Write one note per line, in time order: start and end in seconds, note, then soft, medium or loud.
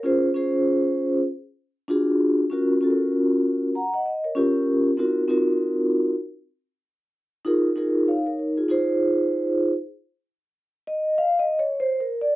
0.00 0.26 C#4 medium
0.00 0.27 F4 medium
0.00 0.21 A#4 medium
0.05 0.27 G#4 medium
0.05 0.27 C5 loud
0.34 1.19 C#4 medium
0.34 1.19 F4 medium
0.34 1.20 G#4 medium
0.34 1.20 C5 medium
1.88 2.41 D4 medium
1.88 2.41 F4 medium
1.88 2.42 F#4 medium
1.88 2.42 G#4 loud
2.50 2.73 C#4 medium
2.50 2.74 F4 medium
2.50 2.74 F#4 medium
2.50 2.75 A#4 medium
2.81 3.66 C#4 medium
2.81 3.66 F4 medium
2.81 3.67 F#4 medium
2.81 2.91 A4 medium
2.90 3.71 A#4 medium
3.75 3.92 F#5 medium
3.75 3.93 A#5 medium
3.94 4.05 D#5 medium
3.94 4.06 F#5 medium
4.06 4.23 D#5 medium
4.24 4.37 A#4 soft
4.24 4.54 C#5 medium
4.35 4.88 C#4 loud
4.35 4.88 F4 medium
4.35 4.89 G4 medium
4.35 4.89 A#4 loud
4.97 5.21 C4 medium
4.97 5.21 D#4 medium
4.97 5.21 F4 medium
4.97 5.22 F#4 medium
4.97 5.22 A#4 medium
5.28 6.13 C4 medium
5.28 6.13 D#4 medium
5.28 6.14 F4 medium
5.28 6.14 F#4 medium
5.28 6.15 A#4 medium
7.45 7.68 D#4 medium
7.45 7.69 F4 medium
7.45 7.69 G#4 medium
7.45 7.69 A#4 medium
7.76 8.61 D#4 medium
7.76 8.08 F4 medium
7.76 8.08 G#4 medium
7.76 8.09 A#4 medium
8.08 8.25 C#5 medium
8.08 8.26 F5 medium
8.26 8.38 A#4 medium
8.26 8.38 C#5 medium
8.39 8.57 A#4 medium
8.57 8.68 F4 medium
8.57 8.69 G#4 medium
8.68 9.69 D#4 medium
8.68 9.70 F4 medium
8.68 9.70 G#4 medium
8.68 9.71 C5 loud
10.87 11.16 D#5 medium
11.18 11.39 F5 loud
11.39 11.58 D#5 medium
11.59 11.80 C#5 medium
11.80 12.01 C5 medium
12.00 12.21 A#4 medium
12.21 12.36 D5 medium